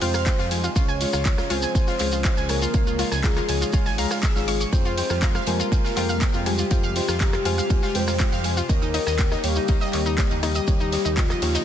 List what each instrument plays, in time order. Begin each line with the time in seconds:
Already playing: analog synth pad C3 G3 G#3 D#4 G4
0.01 analog synth bass F2, synth stab G#3 F4 C5 G5, synth pluck F4, soft synth lead C5, open hi-hat
0.13 synth pluck F5, cross-stick, snare, shekere
0.26 synth stab G#3 F4 C5 G5, kick, snare, clap, ride, shekere
0.38 analog synth bass F2, synth pluck F4, snare, shekere
0.51 synth stab G#3 F4 C5 G#5, open hi-hat, ride
0.63 synth pluck F4, shekere
0.76 analog synth bass C#2, analog synth pad C#3 F3 F4 G#4, synth stab G#3 F4 C#5 F5, synth pluck F4, soft synth lead C#5, kick, ride, shekere
0.88 synth pluck G#5, ride, shekere
1.00 synth stab G#3 F4 C#5 F5, snare, open hi-hat, ride
1.13 analog synth bass C#2, synth pluck F4, cross-stick, snare, shekere
1.25 synth stab G#3 F4 C#5 A#5, kick, snare, clap, ride, shekere
1.38 synth pluck F4, cross-stick, snare, shekere
1.50 analog synth bass C#2, synth stab G#3 F4 C#5 G#5, synth pluck F4, soft synth lead C5, open hi-hat, ride
1.62 synth pluck G#5, shekere
1.75 analog synth bass G#1, synth stab G#3 F4 C#5 G#5, kick, ride, shekere
1.87 synth pluck F4, snare, shekere
1.99 analog synth bass C#2, synth stab G#3 F4 C#5 F5, clap, open hi-hat, ride
2.12 synth pluck F4, shekere
2.24 synth stab G#3 F4 C#5 F5, synth pluck F4, kick, snare, clap, ride, shekere
2.37 analog synth bass C#2, synth pluck G#5, ride, shekere
2.49 synth stab G#3 F4 C#5 G#5, soft synth lead A#4, cross-stick, open hi-hat, ride
2.61 synth pluck F4, ride, shekere
2.74 analog synth bass C#2, synth stab G#3 F4 C#5 F5, analog synth pad D#4, kick, ride, shekere
2.87 synth pluck F4, shekere
2.99 synth stab G#3 F4 C#5 F5, synth pluck F4, snare, open hi-hat, ride
3.12 analog synth bass C#2, synth pluck G#5, cross-stick, snare, shekere
3.24 synth stab G#3 F4 C#5 A#5, soft synth lead G#4, kick, snare, clap, ride, shekere
3.36 synth pluck F4, cross-stick, clap, shekere
3.49 analog synth bass C#2, synth stab G#3 F4 C#5 G#5, open hi-hat, ride
3.61 synth pluck F4, shekere
3.73 analog synth bass G#1, synth stab G#3 F4 C#5 G#5, synth pluck F4, kick, ride, shekere
3.85 synth pluck G#5, snare, shekere
3.98 analog synth bass C#2, synth stab G#3 F4 C#5 A#5, soft synth lead G#4, synth pluck F5, open hi-hat
4.11 synth pluck F4, cross-stick, snare, shekere
4.23 synth pluck E6, kick, snare, clap, ride, shekere
4.36 analog synth bass G#1, synth stab G#3 F4 C#5 F5, synth pluck E6, snare, shekere
4.48 synth stab G#3 F4 C#5 F5, synth pluck C#6, open hi-hat, ride
4.60 synth pluck C#6, shekere
4.73 analog synth bass F2, analog synth pad C3 G3 G#3 F4 G4, synth stab G#3 F4 C5 G5, soft synth lead C5, kick, ride, shekere
4.85 synth pluck F4, ride, shekere
4.97 synth stab G#3 F4 C5 G5, snare, open hi-hat, ride
5.10 analog synth bass F2, synth pluck F4, cross-stick, snare, shekere
5.22 synth stab G#3 F4 C5 A#5, synth pluck F4, kick, snare, clap, ride, shekere
5.34 synth pluck F5, cross-stick, snare, shekere
5.46 analog synth bass F2, synth stab G#3 F4 C5 G#5, soft synth lead A#4, open hi-hat, ride
5.60 synth pluck F4, shekere
5.72 analog synth bass D#2, synth stab G#3 F4 C5 G#5, kick, ride, shekere
5.84 synth pluck F4, snare, shekere
5.96 analog synth bass F2, synth stab G#3 F4 C5 G5, synth pluck F4, clap, open hi-hat, ride
6.09 synth pluck F5, shekere
6.21 synth stab G#3 F4 C5 G5, kick, snare, clap, ride, shekere
6.33 analog synth bass F2, synth pluck F4, ride, shekere
6.46 synth stab G#3 F4 C5 G#5, soft synth lead G4, cross-stick, open hi-hat, ride
6.58 synth pluck F4, ride, shekere
6.71 analog synth bass F2, synth stab G#3 F4 C5 G5, synth pluck F4, kick, ride, shekere
6.83 synth pluck F5, shekere
6.95 synth stab G#3 F4 C5 G5, snare, open hi-hat, ride
7.08 analog synth bass F2, synth pluck F4, cross-stick, snare, shekere
7.20 synth stab G#3 F4 C5 A#5, soft synth lead G4, kick, snare, clap, ride, shekere
7.33 synth pluck F4, cross-stick, clap, shekere
7.45 analog synth bass F2, synth stab G#3 F4 C5 G#5, synth pluck F4, open hi-hat, ride
7.58 synth pluck F5, shekere
7.70 analog synth bass D#2, synth stab G#3 F4 C5 G#5, kick, ride, shekere
7.83 synth pluck F4, snare, shekere
7.95 analog synth bass F2, synth stab G#3 F4 C5 G5, soft synth lead C5, open hi-hat
8.07 synth pluck F4, cross-stick, snare, shekere
8.19 synth stab G#3 F4 C5 G5, synth pluck F4, kick, snare, clap, ride, shekere
8.32 analog synth bass F2, synth pluck F5, snare, shekere
8.44 synth stab G#3 F4 C5 G#5, open hi-hat, ride
8.57 synth pluck F4, shekere
8.69 analog synth bass D#2, analog synth pad C#3 G3 A#3 D#4, synth stab A#3 G4 C#5 D#5, soft synth lead A#4, kick, ride, shekere
8.82 synth pluck D#4, ride, shekere
8.94 synth stab A#3 G4 C#5 D#5, synth pluck D#4, snare, open hi-hat, ride
9.07 analog synth bass D#2, synth pluck D#5, cross-stick, snare, shekere
9.18 synth stab A#3 G4 C#5 G5, kick, snare, clap, ride, shekere
9.31 synth pluck D#4, cross-stick, snare, shekere
9.43 analog synth bass D#2, synth stab A#3 G4 C#5 F5, soft synth lead G4, open hi-hat, ride
9.55 synth pluck D#4, shekere
9.68 analog synth bass C#2, synth stab A#3 G4 C#5 F5, synth pluck D#4, kick, ride, shekere
9.80 synth pluck D#5, snare, shekere
9.93 analog synth bass D#2, synth stab A#3 G4 C#5 D#5, clap, open hi-hat, ride
10.06 synth pluck D#4, shekere
10.18 synth stab A#3 G4 C#5 D#5, kick, snare, clap, ride, shekere
10.31 analog synth bass D#2, synth pluck D#4, ride, shekere
10.43 synth stab A#3 G4 C#5 F5, synth pluck D#4, soft synth lead G4, cross-stick, open hi-hat, ride
10.55 synth pluck D#5, ride, shekere
10.68 analog synth bass D#2, synth stab A#3 G4 C#5 D#5, kick, ride, shekere
10.80 synth pluck D#4, shekere
10.92 synth stab A#3 G4 C#5 D#5, snare, open hi-hat, ride
11.05 analog synth bass D#2, synth pluck D#4, shekere
11.17 synth stab A#3 G4 C#5 G5, synth pluck D#4, soft synth lead F4, kick, snare, clap, ride, shekere
11.30 synth pluck D#5, cross-stick, clap, shekere
11.42 analog synth bass D#2, synth stab A#3 G4 C#5 F5, snare, open hi-hat, ride
11.55 synth pluck D#4, snare, ride, shekere